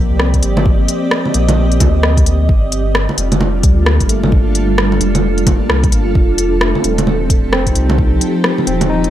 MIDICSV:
0, 0, Header, 1, 5, 480
1, 0, Start_track
1, 0, Key_signature, -2, "minor"
1, 0, Tempo, 458015
1, 690, Time_signature, 4, 2, 24, 8
1, 9537, End_track
2, 0, Start_track
2, 0, Title_t, "Ambient pad"
2, 0, Program_c, 0, 92
2, 0, Note_on_c, 0, 60, 67
2, 0, Note_on_c, 0, 67, 84
2, 0, Note_on_c, 0, 74, 84
2, 0, Note_on_c, 0, 75, 75
2, 2610, Note_off_c, 0, 75, 0
2, 2611, Note_on_c, 0, 55, 72
2, 2731, Note_on_c, 0, 65, 78
2, 2781, Note_on_c, 0, 62, 69
2, 3022, Note_on_c, 0, 69, 71
2, 3285, Note_off_c, 0, 74, 0
2, 3298, Note_off_c, 0, 67, 0
2, 3343, Note_off_c, 0, 60, 0
2, 6450, Note_off_c, 0, 55, 0
2, 6452, Note_off_c, 0, 65, 0
2, 6454, Note_on_c, 0, 53, 78
2, 6636, Note_on_c, 0, 60, 79
2, 6886, Note_on_c, 0, 67, 83
2, 7316, Note_off_c, 0, 62, 0
2, 9537, Note_off_c, 0, 53, 0
2, 9537, Note_off_c, 0, 60, 0
2, 9537, Note_off_c, 0, 67, 0
2, 9537, Note_off_c, 0, 69, 0
2, 9537, End_track
3, 0, Start_track
3, 0, Title_t, "Tine electric piano"
3, 0, Program_c, 1, 4
3, 0, Control_c, 1, 64, 127
3, 0, Note_on_c, 1, 53, 59
3, 0, Note_on_c, 1, 58, 66
3, 206, Note_on_c, 1, 60, 63
3, 331, Note_off_c, 1, 58, 0
3, 1052, Note_off_c, 1, 60, 0
3, 1408, Note_on_c, 1, 58, 55
3, 2253, Note_off_c, 1, 58, 0
3, 2622, Control_c, 1, 64, 0
3, 2628, Note_off_c, 1, 53, 0
3, 2818, Control_c, 1, 64, 127
3, 3807, Note_on_c, 1, 55, 60
3, 4008, Note_on_c, 1, 58, 50
3, 4289, Note_on_c, 1, 57, 67
3, 4653, Note_off_c, 1, 55, 0
3, 4782, Note_off_c, 1, 58, 0
3, 5133, Note_off_c, 1, 57, 0
3, 5726, Note_on_c, 1, 58, 55
3, 6461, Control_c, 1, 64, 0
3, 6572, Note_off_c, 1, 58, 0
3, 6628, Control_c, 1, 64, 127
3, 6926, Note_on_c, 1, 57, 63
3, 7128, Note_on_c, 1, 60, 50
3, 7272, Note_on_c, 1, 62, 51
3, 7772, Note_off_c, 1, 57, 0
3, 7877, Note_off_c, 1, 60, 0
3, 7889, Note_on_c, 1, 60, 80
3, 8065, Note_off_c, 1, 62, 0
3, 8088, Note_on_c, 1, 63, 52
3, 8734, Note_off_c, 1, 60, 0
3, 8862, Note_off_c, 1, 63, 0
3, 9086, Note_on_c, 1, 60, 65
3, 9286, Note_on_c, 1, 63, 50
3, 9311, Note_off_c, 1, 63, 0
3, 9324, Note_on_c, 1, 63, 80
3, 9537, Note_off_c, 1, 60, 0
3, 9537, Note_off_c, 1, 63, 0
3, 9537, End_track
4, 0, Start_track
4, 0, Title_t, "Sub bass"
4, 0, Program_c, 2, 38
4, 113, Note_on_c, 2, 36, 91
4, 436, Note_off_c, 2, 36, 0
4, 446, Note_on_c, 2, 31, 100
4, 916, Note_off_c, 2, 31, 0
4, 1410, Note_on_c, 2, 34, 80
4, 1887, Note_on_c, 2, 38, 82
4, 1903, Note_off_c, 2, 34, 0
4, 2597, Note_off_c, 2, 38, 0
4, 2610, Note_on_c, 2, 31, 83
4, 3219, Note_off_c, 2, 31, 0
4, 3329, Note_on_c, 2, 29, 83
4, 3807, Note_on_c, 2, 38, 97
4, 3823, Note_off_c, 2, 29, 0
4, 4177, Note_off_c, 2, 38, 0
4, 4197, Note_on_c, 2, 31, 83
4, 5238, Note_off_c, 2, 31, 0
4, 5249, Note_on_c, 2, 29, 84
4, 5858, Note_off_c, 2, 29, 0
4, 5968, Note_on_c, 2, 36, 79
4, 6208, Note_on_c, 2, 31, 87
4, 6224, Note_off_c, 2, 36, 0
4, 6434, Note_off_c, 2, 31, 0
4, 6447, Note_on_c, 2, 29, 94
4, 7057, Note_off_c, 2, 29, 0
4, 7169, Note_on_c, 2, 27, 79
4, 7778, Note_off_c, 2, 27, 0
4, 7797, Note_on_c, 2, 29, 92
4, 8118, Note_off_c, 2, 29, 0
4, 8124, Note_on_c, 2, 36, 97
4, 8595, Note_off_c, 2, 36, 0
4, 9086, Note_on_c, 2, 27, 83
4, 9537, Note_off_c, 2, 27, 0
4, 9537, End_track
5, 0, Start_track
5, 0, Title_t, "Drums"
5, 205, Note_on_c, 9, 37, 98
5, 309, Note_off_c, 9, 37, 0
5, 354, Note_on_c, 9, 42, 29
5, 356, Note_on_c, 9, 36, 57
5, 446, Note_off_c, 9, 42, 0
5, 446, Note_on_c, 9, 42, 55
5, 461, Note_off_c, 9, 36, 0
5, 551, Note_off_c, 9, 42, 0
5, 596, Note_on_c, 9, 61, 69
5, 688, Note_on_c, 9, 36, 116
5, 701, Note_off_c, 9, 61, 0
5, 792, Note_off_c, 9, 36, 0
5, 927, Note_on_c, 9, 42, 52
5, 1032, Note_off_c, 9, 42, 0
5, 1167, Note_on_c, 9, 37, 104
5, 1271, Note_off_c, 9, 37, 0
5, 1315, Note_on_c, 9, 61, 34
5, 1407, Note_on_c, 9, 42, 56
5, 1420, Note_off_c, 9, 61, 0
5, 1512, Note_off_c, 9, 42, 0
5, 1557, Note_on_c, 9, 42, 31
5, 1557, Note_on_c, 9, 61, 61
5, 1662, Note_off_c, 9, 42, 0
5, 1662, Note_off_c, 9, 61, 0
5, 1798, Note_on_c, 9, 42, 29
5, 1888, Note_on_c, 9, 36, 105
5, 1891, Note_off_c, 9, 42, 0
5, 1891, Note_on_c, 9, 42, 54
5, 1891, Note_on_c, 9, 61, 64
5, 1993, Note_off_c, 9, 36, 0
5, 1996, Note_off_c, 9, 42, 0
5, 1996, Note_off_c, 9, 61, 0
5, 2130, Note_on_c, 9, 37, 106
5, 2235, Note_off_c, 9, 37, 0
5, 2277, Note_on_c, 9, 36, 103
5, 2280, Note_on_c, 9, 42, 32
5, 2373, Note_off_c, 9, 42, 0
5, 2373, Note_on_c, 9, 42, 55
5, 2382, Note_off_c, 9, 36, 0
5, 2478, Note_off_c, 9, 42, 0
5, 2610, Note_on_c, 9, 36, 118
5, 2715, Note_off_c, 9, 36, 0
5, 2852, Note_on_c, 9, 42, 54
5, 2957, Note_off_c, 9, 42, 0
5, 3090, Note_on_c, 9, 37, 104
5, 3195, Note_off_c, 9, 37, 0
5, 3239, Note_on_c, 9, 61, 35
5, 3330, Note_on_c, 9, 42, 54
5, 3344, Note_off_c, 9, 61, 0
5, 3435, Note_off_c, 9, 42, 0
5, 3477, Note_on_c, 9, 42, 30
5, 3477, Note_on_c, 9, 61, 59
5, 3569, Note_off_c, 9, 61, 0
5, 3569, Note_on_c, 9, 61, 56
5, 3582, Note_off_c, 9, 42, 0
5, 3674, Note_off_c, 9, 61, 0
5, 3809, Note_on_c, 9, 36, 107
5, 3809, Note_on_c, 9, 42, 56
5, 3914, Note_off_c, 9, 36, 0
5, 3914, Note_off_c, 9, 42, 0
5, 4049, Note_on_c, 9, 37, 108
5, 4154, Note_off_c, 9, 37, 0
5, 4197, Note_on_c, 9, 36, 65
5, 4197, Note_on_c, 9, 42, 30
5, 4289, Note_off_c, 9, 42, 0
5, 4289, Note_on_c, 9, 42, 54
5, 4302, Note_off_c, 9, 36, 0
5, 4394, Note_off_c, 9, 42, 0
5, 4438, Note_on_c, 9, 61, 60
5, 4529, Note_on_c, 9, 36, 112
5, 4543, Note_off_c, 9, 61, 0
5, 4634, Note_off_c, 9, 36, 0
5, 4769, Note_on_c, 9, 42, 53
5, 4873, Note_off_c, 9, 42, 0
5, 5010, Note_on_c, 9, 37, 108
5, 5115, Note_off_c, 9, 37, 0
5, 5157, Note_on_c, 9, 61, 34
5, 5248, Note_on_c, 9, 42, 51
5, 5261, Note_off_c, 9, 61, 0
5, 5353, Note_off_c, 9, 42, 0
5, 5396, Note_on_c, 9, 42, 30
5, 5396, Note_on_c, 9, 61, 55
5, 5501, Note_off_c, 9, 42, 0
5, 5501, Note_off_c, 9, 61, 0
5, 5636, Note_on_c, 9, 42, 28
5, 5728, Note_on_c, 9, 36, 103
5, 5729, Note_off_c, 9, 42, 0
5, 5729, Note_on_c, 9, 42, 54
5, 5729, Note_on_c, 9, 61, 63
5, 5833, Note_off_c, 9, 36, 0
5, 5834, Note_off_c, 9, 42, 0
5, 5834, Note_off_c, 9, 61, 0
5, 5969, Note_on_c, 9, 37, 101
5, 6074, Note_off_c, 9, 37, 0
5, 6116, Note_on_c, 9, 36, 100
5, 6116, Note_on_c, 9, 42, 29
5, 6207, Note_off_c, 9, 42, 0
5, 6207, Note_on_c, 9, 42, 52
5, 6221, Note_off_c, 9, 36, 0
5, 6312, Note_off_c, 9, 42, 0
5, 6448, Note_on_c, 9, 36, 115
5, 6553, Note_off_c, 9, 36, 0
5, 6688, Note_on_c, 9, 42, 49
5, 6793, Note_off_c, 9, 42, 0
5, 6928, Note_on_c, 9, 37, 101
5, 7033, Note_off_c, 9, 37, 0
5, 7077, Note_on_c, 9, 61, 34
5, 7170, Note_on_c, 9, 42, 54
5, 7182, Note_off_c, 9, 61, 0
5, 7275, Note_off_c, 9, 42, 0
5, 7319, Note_on_c, 9, 42, 30
5, 7319, Note_on_c, 9, 61, 55
5, 7409, Note_off_c, 9, 61, 0
5, 7409, Note_on_c, 9, 61, 55
5, 7423, Note_off_c, 9, 42, 0
5, 7514, Note_off_c, 9, 61, 0
5, 7648, Note_on_c, 9, 36, 102
5, 7651, Note_on_c, 9, 42, 53
5, 7753, Note_off_c, 9, 36, 0
5, 7756, Note_off_c, 9, 42, 0
5, 7888, Note_on_c, 9, 37, 107
5, 7993, Note_off_c, 9, 37, 0
5, 8034, Note_on_c, 9, 42, 29
5, 8035, Note_on_c, 9, 36, 59
5, 8127, Note_off_c, 9, 42, 0
5, 8127, Note_on_c, 9, 42, 49
5, 8140, Note_off_c, 9, 36, 0
5, 8232, Note_off_c, 9, 42, 0
5, 8275, Note_on_c, 9, 61, 63
5, 8368, Note_on_c, 9, 36, 107
5, 8379, Note_off_c, 9, 61, 0
5, 8473, Note_off_c, 9, 36, 0
5, 8607, Note_on_c, 9, 42, 53
5, 8711, Note_off_c, 9, 42, 0
5, 8845, Note_on_c, 9, 37, 100
5, 8950, Note_off_c, 9, 37, 0
5, 8996, Note_on_c, 9, 61, 34
5, 9088, Note_on_c, 9, 42, 52
5, 9100, Note_off_c, 9, 61, 0
5, 9192, Note_off_c, 9, 42, 0
5, 9234, Note_on_c, 9, 42, 28
5, 9234, Note_on_c, 9, 61, 61
5, 9339, Note_off_c, 9, 42, 0
5, 9339, Note_off_c, 9, 61, 0
5, 9476, Note_on_c, 9, 42, 28
5, 9537, Note_off_c, 9, 42, 0
5, 9537, End_track
0, 0, End_of_file